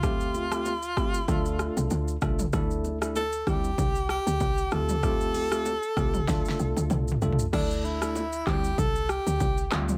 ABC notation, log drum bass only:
X:1
M:4/4
L:1/16
Q:"Swing 16ths" 1/4=96
K:Dm
V:1 name="Log drum bass" clef=bass
D,,6 C,,2 D,,3 C,, D,,2 C,,2 | D,,6 D,,2 C,,3 D,, C,,2 D,,2- | D,,6 C,,2 D,, z C,, D,, C,,2 C,,2 | D,,6 D,,2 C,,3 D,, C,,2 D,,2 |]